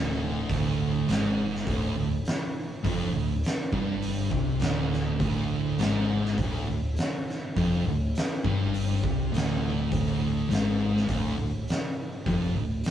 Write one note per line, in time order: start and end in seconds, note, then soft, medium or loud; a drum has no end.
0.00 0.45 D1 loud
0.00 0.49 D2 loud
0.00 12.90 D3 medium
0.00 12.90 E4 medium
0.00 5.16 A4 medium
0.50 1.04 D1 loud
0.50 1.08 D2 loud
0.50 kick loud
0.50 open hi-hat medium
1.08 1.63 G#1 medium
1.08 1.66 G#2 loud
1.08 snare loud
1.08 open hi-hat medium
1.55 snare soft
1.67 1.94 D1 loud
1.67 1.95 D2 loud
1.67 kick loud
1.67 open hi-hat medium
1.95 2.23 D1 medium
1.95 2.20 D2 medium
2.25 snare loud
2.25 open hi-hat medium
2.83 3.12 F1 medium
2.83 3.13 F2 loud
2.83 kick loud
2.83 open hi-hat medium
3.14 3.42 D1 medium
3.14 3.38 D2 medium
3.44 snare loud
3.44 open hi-hat medium
3.72 4.28 G1 loud
3.72 4.31 G2 loud
3.72 kick loud
4.02 open hi-hat medium
4.31 4.59 C2 medium
4.31 4.60 C3 loud
4.31 kick loud
4.60 5.16 D1 loud
4.60 5.19 D2 loud
4.60 snare loud
4.60 open hi-hat medium
4.93 snare soft
5.20 5.75 D1 loud
5.20 5.78 D2 loud
5.20 12.90 G3 medium
5.20 kick loud
5.20 open hi-hat medium
5.78 6.34 G#1 medium
5.78 6.38 G#2 loud
5.78 snare loud
5.78 open hi-hat medium
6.25 snare soft
6.38 6.65 D1 loud
6.38 6.68 D2 loud
6.38 kick loud
6.38 open hi-hat medium
6.67 6.95 D1 medium
6.67 6.92 D2 medium
6.96 snare loud
6.96 open hi-hat medium
7.29 snare soft
7.56 7.84 F1 loud
7.56 7.85 F2 loud
7.56 kick loud
7.56 open hi-hat medium
7.85 8.13 D1 medium
7.85 8.10 D2 medium
8.15 snare loud
8.15 open hi-hat medium
8.44 8.99 G1 medium
8.44 9.02 G2 loud
8.44 kick loud
8.74 open hi-hat medium
9.03 9.31 C2 medium
9.03 9.32 C3 loud
9.03 kick loud
9.32 9.87 D1 loud
9.32 9.90 D2 loud
9.32 open hi-hat medium
9.37 snare loud
9.91 10.47 D1 loud
9.91 10.49 D2 loud
9.91 kick loud
9.91 open hi-hat medium
10.50 11.05 G#1 loud
10.50 11.07 G#2 loud
10.50 snare loud
10.50 open hi-hat medium
10.97 snare soft
11.07 11.36 D1 loud
11.07 11.37 D2 loud
11.07 kick loud
11.07 open hi-hat medium
11.38 11.66 D1 medium
11.38 11.62 D2 medium
11.68 snare loud
11.68 open hi-hat medium
12.26 12.54 F1 loud
12.26 12.55 F2 loud
12.26 kick loud
12.26 open hi-hat medium
12.56 12.83 D1 medium
12.56 12.80 D2 medium
12.84 snare loud
12.84 open hi-hat medium